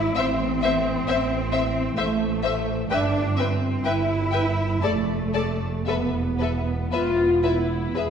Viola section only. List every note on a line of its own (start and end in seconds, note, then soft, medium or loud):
0.17 0.25 C5 medium
0.64 0.72 C5 soft
1.08 1.16 C5 soft
1.52 1.60 C5 soft
1.97 2.05 C5 soft
2.43 2.51 C5 soft
2.91 2.99 B4 medium
3.39 3.47 B4 soft
3.85 3.93 B4 soft
4.34 4.42 B4 soft
4.84 4.92 A4 soft
5.35 5.43 A4 soft
5.87 5.95 A4 soft
6.41 6.49 A4 soft
6.93 7.41 F4 medium
7.45 7.96 E4 soft
7.96 8.10 G#4 medium